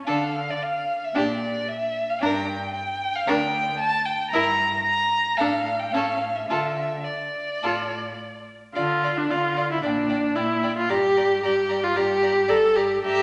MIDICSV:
0, 0, Header, 1, 5, 480
1, 0, Start_track
1, 0, Tempo, 530973
1, 69, Time_signature, 4, 2, 24, 8
1, 4867, Tempo, 560224
1, 8227, Tempo, 530504
1, 11774, End_track
2, 0, Start_track
2, 0, Title_t, "Violin"
2, 0, Program_c, 0, 40
2, 58, Note_on_c, 0, 77, 61
2, 456, Note_on_c, 0, 74, 54
2, 469, Note_off_c, 0, 77, 0
2, 563, Note_on_c, 0, 77, 64
2, 577, Note_off_c, 0, 74, 0
2, 941, Note_on_c, 0, 76, 57
2, 955, Note_off_c, 0, 77, 0
2, 1046, Note_on_c, 0, 74, 58
2, 1059, Note_off_c, 0, 76, 0
2, 1522, Note_on_c, 0, 76, 67
2, 1536, Note_off_c, 0, 74, 0
2, 1895, Note_on_c, 0, 77, 59
2, 1909, Note_off_c, 0, 76, 0
2, 1995, Note_off_c, 0, 77, 0
2, 2001, Note_on_c, 0, 79, 71
2, 2473, Note_off_c, 0, 79, 0
2, 2477, Note_on_c, 0, 79, 70
2, 2851, Note_on_c, 0, 77, 68
2, 2865, Note_off_c, 0, 79, 0
2, 2966, Note_on_c, 0, 79, 82
2, 2979, Note_off_c, 0, 77, 0
2, 3426, Note_off_c, 0, 79, 0
2, 3431, Note_on_c, 0, 81, 83
2, 3662, Note_on_c, 0, 79, 78
2, 3676, Note_off_c, 0, 81, 0
2, 3889, Note_off_c, 0, 79, 0
2, 3894, Note_on_c, 0, 82, 80
2, 4369, Note_off_c, 0, 82, 0
2, 4381, Note_on_c, 0, 82, 84
2, 4856, Note_on_c, 0, 77, 71
2, 4869, Note_off_c, 0, 82, 0
2, 5217, Note_on_c, 0, 79, 62
2, 5230, Note_off_c, 0, 77, 0
2, 5323, Note_on_c, 0, 77, 71
2, 5336, Note_off_c, 0, 79, 0
2, 5698, Note_on_c, 0, 76, 54
2, 5711, Note_off_c, 0, 77, 0
2, 5800, Note_off_c, 0, 76, 0
2, 5805, Note_on_c, 0, 76, 61
2, 6286, Note_on_c, 0, 74, 51
2, 6299, Note_off_c, 0, 76, 0
2, 7512, Note_off_c, 0, 74, 0
2, 7756, Note_on_c, 0, 77, 46
2, 7824, Note_off_c, 0, 77, 0
2, 7989, Note_on_c, 0, 77, 39
2, 8058, Note_off_c, 0, 77, 0
2, 8226, Note_on_c, 0, 77, 44
2, 8298, Note_off_c, 0, 77, 0
2, 8474, Note_on_c, 0, 77, 42
2, 8546, Note_off_c, 0, 77, 0
2, 8721, Note_on_c, 0, 79, 46
2, 8794, Note_off_c, 0, 79, 0
2, 8948, Note_on_c, 0, 79, 43
2, 9021, Note_off_c, 0, 79, 0
2, 9191, Note_on_c, 0, 79, 47
2, 9264, Note_off_c, 0, 79, 0
2, 9423, Note_on_c, 0, 79, 44
2, 9495, Note_off_c, 0, 79, 0
2, 9666, Note_on_c, 0, 82, 49
2, 9738, Note_off_c, 0, 82, 0
2, 9912, Note_on_c, 0, 82, 45
2, 9984, Note_off_c, 0, 82, 0
2, 10147, Note_on_c, 0, 82, 47
2, 10219, Note_off_c, 0, 82, 0
2, 10380, Note_on_c, 0, 82, 46
2, 10452, Note_off_c, 0, 82, 0
2, 10628, Note_on_c, 0, 82, 48
2, 10700, Note_off_c, 0, 82, 0
2, 10876, Note_on_c, 0, 82, 48
2, 10948, Note_off_c, 0, 82, 0
2, 11109, Note_on_c, 0, 82, 60
2, 11181, Note_off_c, 0, 82, 0
2, 11352, Note_on_c, 0, 82, 55
2, 11424, Note_off_c, 0, 82, 0
2, 11600, Note_on_c, 0, 82, 62
2, 11774, Note_off_c, 0, 82, 0
2, 11774, End_track
3, 0, Start_track
3, 0, Title_t, "Violin"
3, 0, Program_c, 1, 40
3, 63, Note_on_c, 1, 69, 51
3, 295, Note_off_c, 1, 69, 0
3, 1044, Note_on_c, 1, 67, 47
3, 1267, Note_off_c, 1, 67, 0
3, 2013, Note_on_c, 1, 70, 58
3, 2232, Note_off_c, 1, 70, 0
3, 2961, Note_on_c, 1, 70, 54
3, 3183, Note_off_c, 1, 70, 0
3, 3915, Note_on_c, 1, 70, 59
3, 4134, Note_off_c, 1, 70, 0
3, 4868, Note_on_c, 1, 69, 54
3, 5081, Note_off_c, 1, 69, 0
3, 5349, Note_on_c, 1, 69, 52
3, 5561, Note_off_c, 1, 69, 0
3, 5826, Note_on_c, 1, 69, 46
3, 6048, Note_off_c, 1, 69, 0
3, 6791, Note_on_c, 1, 69, 39
3, 7017, Note_off_c, 1, 69, 0
3, 7757, Note_on_c, 1, 74, 49
3, 7825, Note_off_c, 1, 74, 0
3, 7997, Note_on_c, 1, 74, 38
3, 8065, Note_off_c, 1, 74, 0
3, 8230, Note_on_c, 1, 74, 41
3, 8303, Note_off_c, 1, 74, 0
3, 8461, Note_on_c, 1, 74, 43
3, 8533, Note_off_c, 1, 74, 0
3, 8700, Note_on_c, 1, 74, 47
3, 8773, Note_off_c, 1, 74, 0
3, 8938, Note_on_c, 1, 74, 45
3, 9010, Note_off_c, 1, 74, 0
3, 9178, Note_on_c, 1, 74, 44
3, 9251, Note_off_c, 1, 74, 0
3, 9428, Note_on_c, 1, 74, 42
3, 9500, Note_off_c, 1, 74, 0
3, 9666, Note_on_c, 1, 74, 56
3, 9738, Note_off_c, 1, 74, 0
3, 9919, Note_on_c, 1, 74, 44
3, 9992, Note_off_c, 1, 74, 0
3, 10159, Note_on_c, 1, 74, 48
3, 10232, Note_off_c, 1, 74, 0
3, 10390, Note_on_c, 1, 74, 49
3, 10462, Note_off_c, 1, 74, 0
3, 10627, Note_on_c, 1, 74, 55
3, 10700, Note_off_c, 1, 74, 0
3, 10869, Note_on_c, 1, 74, 53
3, 10941, Note_off_c, 1, 74, 0
3, 11101, Note_on_c, 1, 74, 58
3, 11173, Note_off_c, 1, 74, 0
3, 11359, Note_on_c, 1, 74, 50
3, 11431, Note_off_c, 1, 74, 0
3, 11605, Note_on_c, 1, 76, 66
3, 11774, Note_off_c, 1, 76, 0
3, 11774, End_track
4, 0, Start_track
4, 0, Title_t, "Viola"
4, 0, Program_c, 2, 41
4, 60, Note_on_c, 2, 62, 44
4, 293, Note_off_c, 2, 62, 0
4, 1035, Note_on_c, 2, 62, 48
4, 1262, Note_off_c, 2, 62, 0
4, 1999, Note_on_c, 2, 62, 54
4, 2225, Note_off_c, 2, 62, 0
4, 2960, Note_on_c, 2, 62, 58
4, 3183, Note_off_c, 2, 62, 0
4, 3917, Note_on_c, 2, 64, 61
4, 4135, Note_off_c, 2, 64, 0
4, 4876, Note_on_c, 2, 62, 54
4, 5085, Note_off_c, 2, 62, 0
4, 5337, Note_on_c, 2, 61, 51
4, 5555, Note_off_c, 2, 61, 0
4, 5818, Note_on_c, 2, 65, 40
4, 6043, Note_off_c, 2, 65, 0
4, 6799, Note_on_c, 2, 65, 43
4, 7021, Note_off_c, 2, 65, 0
4, 7752, Note_on_c, 2, 65, 61
4, 8116, Note_on_c, 2, 62, 60
4, 8129, Note_off_c, 2, 65, 0
4, 8225, Note_on_c, 2, 65, 70
4, 8238, Note_off_c, 2, 62, 0
4, 8589, Note_off_c, 2, 65, 0
4, 8601, Note_on_c, 2, 64, 58
4, 8706, Note_off_c, 2, 64, 0
4, 8712, Note_on_c, 2, 62, 60
4, 9177, Note_on_c, 2, 64, 66
4, 9191, Note_off_c, 2, 62, 0
4, 9539, Note_off_c, 2, 64, 0
4, 9552, Note_on_c, 2, 65, 69
4, 9669, Note_on_c, 2, 67, 81
4, 9683, Note_off_c, 2, 65, 0
4, 10145, Note_off_c, 2, 67, 0
4, 10151, Note_on_c, 2, 67, 77
4, 10519, Note_on_c, 2, 65, 73
4, 10533, Note_off_c, 2, 67, 0
4, 10634, Note_on_c, 2, 67, 84
4, 10648, Note_off_c, 2, 65, 0
4, 11113, Note_on_c, 2, 69, 96
4, 11127, Note_off_c, 2, 67, 0
4, 11348, Note_on_c, 2, 67, 82
4, 11362, Note_off_c, 2, 69, 0
4, 11585, Note_off_c, 2, 67, 0
4, 11590, Note_on_c, 2, 67, 89
4, 11774, Note_off_c, 2, 67, 0
4, 11774, End_track
5, 0, Start_track
5, 0, Title_t, "Cello"
5, 0, Program_c, 3, 42
5, 60, Note_on_c, 3, 50, 50
5, 474, Note_off_c, 3, 50, 0
5, 1033, Note_on_c, 3, 46, 50
5, 1439, Note_off_c, 3, 46, 0
5, 2007, Note_on_c, 3, 43, 56
5, 2405, Note_off_c, 3, 43, 0
5, 2960, Note_on_c, 3, 38, 62
5, 3359, Note_off_c, 3, 38, 0
5, 3911, Note_on_c, 3, 43, 64
5, 4307, Note_off_c, 3, 43, 0
5, 4862, Note_on_c, 3, 45, 58
5, 5250, Note_off_c, 3, 45, 0
5, 5332, Note_on_c, 3, 45, 46
5, 5730, Note_off_c, 3, 45, 0
5, 5811, Note_on_c, 3, 50, 47
5, 6220, Note_off_c, 3, 50, 0
5, 6792, Note_on_c, 3, 45, 43
5, 7196, Note_off_c, 3, 45, 0
5, 7751, Note_on_c, 3, 50, 52
5, 8168, Note_off_c, 3, 50, 0
5, 8221, Note_on_c, 3, 50, 46
5, 8650, Note_off_c, 3, 50, 0
5, 8707, Note_on_c, 3, 46, 52
5, 9125, Note_off_c, 3, 46, 0
5, 9179, Note_on_c, 3, 46, 50
5, 9604, Note_off_c, 3, 46, 0
5, 9660, Note_on_c, 3, 43, 61
5, 10088, Note_off_c, 3, 43, 0
5, 10150, Note_on_c, 3, 43, 56
5, 10569, Note_off_c, 3, 43, 0
5, 10631, Note_on_c, 3, 43, 64
5, 11049, Note_off_c, 3, 43, 0
5, 11105, Note_on_c, 3, 43, 64
5, 11530, Note_off_c, 3, 43, 0
5, 11588, Note_on_c, 3, 43, 67
5, 11774, Note_off_c, 3, 43, 0
5, 11774, End_track
0, 0, End_of_file